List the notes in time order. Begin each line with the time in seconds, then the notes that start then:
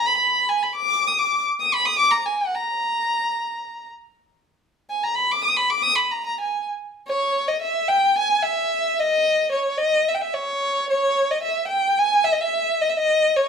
0.06 B5
0.17 B5
0.49 G#5
0.63 B5
0.75 D6
1.08 D#6
1.19 D6
1.60 D#6
1.74 B5
1.85 D#6
1.99 D6
2.11 A#5
2.26 G#5
2.41 F#5
2.55 A#5
4.90 G#5
5.03 A#5
5.15 B5
5.32 D6
5.44 D#6
5.57 B5
5.70 D6
5.82 D#6
5.96 B5
6.11 A#5
6.26 A#5
6.41 G#5
7.07 C#5
7.48 D#5
7.62 E5
7.88 G5
8.18 G#5
8.43 E5
9.00 D#5
9.52 C#5
9.78 D#5
10.08 E5
10.15 G5
10.22 E5
10.34 C#5
10.90 C#5
11.31 D#5
11.43 E5
11.68 G5
11.99 G#5
12.24 E5
12.32 D#5
12.41 E5
12.82 D#5
12.90 E5
12.97 D#5
13.36 C#5